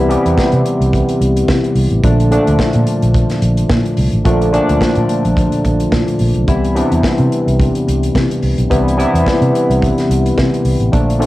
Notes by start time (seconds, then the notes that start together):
Already playing: C2 C3 E3 G3 B3 E4
0.08 C3 E3 G3 B3 G4, closed hi-hat
0.26 E2, closed hi-hat
0.38 kick, snare
0.52 C3, closed hi-hat
0.66 closed hi-hat
0.80 C2, closed hi-hat
0.93 kick, closed hi-hat
1.09 closed hi-hat
1.21 C2, closed hi-hat
1.37 closed hi-hat
1.48 C3, kick, snare
1.64 closed hi-hat
1.75 C2, open hi-hat
1.91 A1, closed hi-hat
2.03 A#1 A#2 D3 F3 A3 D4, kick, closed hi-hat
2.20 closed hi-hat
2.30 A#2 D3 F3 A3 D4, closed hi-hat
2.47 D2, closed hi-hat
2.59 kick, snare
2.73 A#2, closed hi-hat
2.87 closed hi-hat
3.02 A#1, closed hi-hat
3.14 kick, closed hi-hat
3.30 snare, closed hi-hat
3.42 A#1, closed hi-hat
3.57 closed hi-hat
3.70 A#2, kick, snare
3.86 closed hi-hat
3.97 C2, open hi-hat
4.12 A1, closed hi-hat
4.24 A#1 A#2 D3 F3 A3 D4, kick, closed hi-hat
4.42 closed hi-hat
4.52 A#2 D3 F3 A3 D4, closed hi-hat
4.69 D2, closed hi-hat
4.81 kick, snare
4.95 A#2, closed hi-hat
5.09 closed hi-hat
5.25 A#1, closed hi-hat
5.37 kick, closed hi-hat
5.52 closed hi-hat
5.64 A#1, kick, closed hi-hat
5.80 closed hi-hat
5.92 A#2, kick, snare
6.08 closed hi-hat
6.19 A#1, open hi-hat
6.35 B1, closed hi-hat
6.47 C2 C3 E3 G3 B3 E4, kick, closed hi-hat
6.64 closed hi-hat
6.75 C3 E3 G3 B3 D4, closed hi-hat
6.92 E2, closed hi-hat
7.03 muted fingered electric bass stroke, kick, snare
7.18 C3, closed hi-hat
7.32 closed hi-hat
7.47 C2, closed hi-hat
7.60 kick, closed hi-hat
7.75 closed hi-hat
7.88 C2, closed hi-hat
8.03 closed hi-hat
8.15 C3, kick, snare
8.31 closed hi-hat
8.42 C2, open hi-hat
8.58 B1, closed hi-hat
8.69 C2 C3 E3 G3 B3 E4, kick, closed hi-hat
8.88 closed hi-hat
8.97 C3 E3 G3 B3 E4, closed hi-hat
9.14 E2, closed hi-hat
9.26 kick, snare
9.42 C3, closed hi-hat
9.55 closed hi-hat
9.70 C2, closed hi-hat
9.82 kick, closed hi-hat
9.98 snare, closed hi-hat
10.09 C2, closed hi-hat
10.26 closed hi-hat
10.37 C3, kick, snare
10.54 closed hi-hat
10.65 C2, open hi-hat
10.80 A1, closed hi-hat
10.92 A#1 A#2 D3 F3 A3 D4, kick, closed hi-hat
11.10 closed hi-hat
11.19 A#2 D3 F3 A3 C#4, closed hi-hat